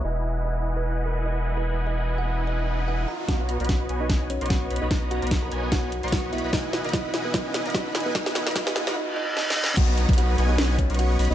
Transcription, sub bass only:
X:1
M:4/4
L:1/16
Q:"Swing 16ths" 1/4=148
K:B
V:1 name="Sub bass" clef=bass
E,,,16- | E,,,12- E,,,2 z2 | B,,,3 B,,,3 B,,,4- B,,, B,,,3 B,,, B,,, | B,,,3 B,,,3 B,,,4- B,,, B,,,3 B,,, B,,, |
E,,,3 E,,,3 E,,,2 E,,,3 E,,,3 E,,,2 | E,,,3 E,,, E,,,3 E,,, z8 | B,,,3 B,,,3 B,,,4- B,,, B,,,3 B,,, B,,, |]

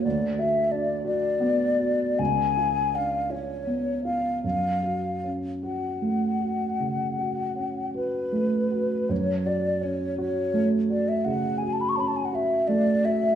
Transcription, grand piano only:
X:1
M:12/8
L:1/8
Q:3/8=55
K:F#m
V:1 name="Grand piano"
D,, F D F B, F C,, ^E D E B, E | F,, F C F A, F C, F C F A, F | F,, F C F A, F C, F C F A, F |]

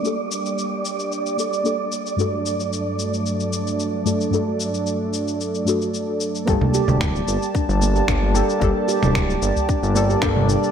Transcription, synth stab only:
X:1
M:4/4
L:1/8
Q:"Swing 16ths" 1/4=112
K:Gm
V:1 name="Synth stab"
[B,DGA]4- [B,DGA] [B,DGA] [B,DGA]2 | [G,,A,D^FA]6- [G,,A,DFA] [G,,A,DFA] | [G,,A,D^FA]4- [G,,A,DFA] [G,,A,DFA]3 | [B,DGA]6- [B,DGA] [B,DGA] |
[B,DGA]4- [B,DGA] [B,DGA] [B,DGA]2 |]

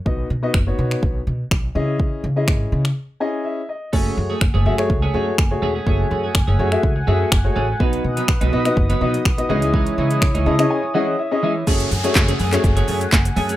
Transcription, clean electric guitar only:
X:1
M:4/4
L:1/16
Q:1/4=124
K:F#dor
V:1 name="Clean electric guitar"
z16 | z16 | [A,CG]2 z [A,CG] z [A,CG] [A,CG] z2 [A,CG] [A,CG] z3 [A,CG] [A,CG] | [A,CG]2 [A,CG] [A,CG] z [A,CG] [A,CG] z3 [A,CG]2 z2 [A,CG]2 |
[F,B,D]2 z [F,B,D] z [F,B,D] [F,B,D] z2 [F,B,D] [F,B,D] z3 [E,G,D] [E,G,D] | [E,G,D]2 [E,G,D] [E,G,D] z [E,G,D] [E,G,D] z3 [E,G,D]2 z2 [E,G,D]2 | [A,CG]2 z [A,CG] z [A,CG] [A,CG] z2 [A,CG] [A,CG] z3 [A,CG] [A,CG] |]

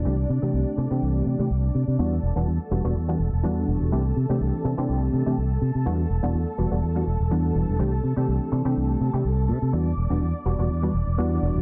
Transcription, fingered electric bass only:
X:1
M:4/4
L:1/16
Q:"Swing 16ths" 1/4=124
K:Em
V:1 name="Fingered electric bass" clef=bass
C,,2 C, C, C,, z C, C, C,,2 C, C, C,,2 C, C, | E,,2 E,,, E,,, E,, z E,,, E,,, E,,2 E,,, E,,, E,,2 E,,, E,,, | C,,2 C, C, C,, z C, C, C,,2 C, C, C,,2 C, C, | E,,2 E,,, E,,, E,, z E,,, E,,, E,,2 E,,, E,,, E,,2 E,,, E,,, |
C,,2 C, C, C,, z C, C, C,,2 C, C, C,,2 C, C, | E,,2 E,,, E,,, E,, z E,,, E,,, E,,2 E,,, E,,, E,,2 E,,, E,,, |]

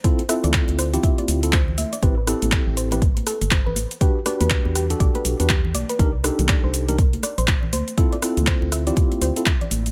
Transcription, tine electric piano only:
X:1
M:4/4
L:1/16
Q:"Swing 16ths" 1/4=121
K:Ddor
V:1 name="Tine electric piano"
[CEFA] z [CEFA]4- [CEFA] [CEFG]4 [CEFA] z4 | [CEGB] z [CEGA]4- [CEGA] [CEGB] z8 | [D^FGB] z [DFGB]4- [DFGB] [DFGA]4 [DFGB] z4 | [D_EG_B] z [DEGA]4- [DEGA] [DEGB] z8 |
[CEFA] z [CEFA]4- [CEFA] [CEFG]4 [CEFA] z4 |]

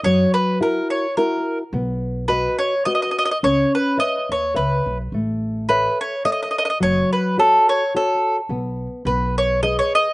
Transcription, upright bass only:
X:1
M:3/4
L:1/8
Q:"Swing" 1/4=107
K:F#dor
V:1 name="Upright bass" clef=bass
F,, z4 z | B,,,4 z2 | C,, z2 D,, C,, B,,, | A,,,4 z2 |
F,,, z4 z | B,,,2 B,,,4 |]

